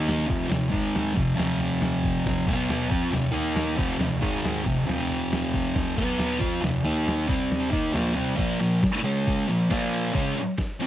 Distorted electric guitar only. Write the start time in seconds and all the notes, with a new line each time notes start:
Already playing: D#3 A#3 D#4
0.27 F2 C3 F3
0.49 F2 C3
0.70 G#2 D#3 G#3
1.15 F2 C3
1.36 F2 C3 F3
2.46 B2 F#3 B3
2.89 F3 C4 F4
3.12 F2 C3
3.32 D#3 A#3 D#4
3.76 F2 C3 F3
3.99 F2 C3
4.21 G#2 D#3 G#3
4.64 F2 C3
4.86 F2 C3 F3
5.96 B2 F#3 B3
6.40 F3 C4 F4
6.61 F2 C3
6.85 D#3 A#3 D#4
7.28 C3 G3 C4
7.70 D#3 A#3 D#4
7.93 A#2 F3 A#3
8.14 C3 G3 C4
8.36 A#2 F3 A#3
8.60 A#2 F3
9.04 C#3 G#3 C#4
9.48 A#2 F3
9.70 A#2 F3 A#3
10.13 C#3 G#3 C#4
10.36 muted distorted electric guitar stroke
10.80 F3 C4 F4